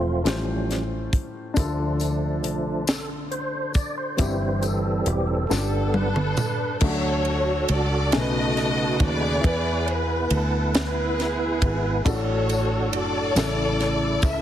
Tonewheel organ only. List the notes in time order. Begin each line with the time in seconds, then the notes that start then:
Already playing: F3 A3 C4 F4
0.24 F3 G3 C#4
1.57 F3 A3 D4
2.90 A4
3.31 C5
3.74 D5
3.98 C5
4.17 E3 G3 C4
4.62 A4
5.07 G4
5.27 A4
5.49 D3 G3 B3
5.94 B4
6.82 D4 F#4 G#4
6.89 A4
8.12 C#3 A3 D#4 F#4 B4
9.44 B3 E4 B4
12.05 D4 F#4 A4
13.35 C#3 E4 A4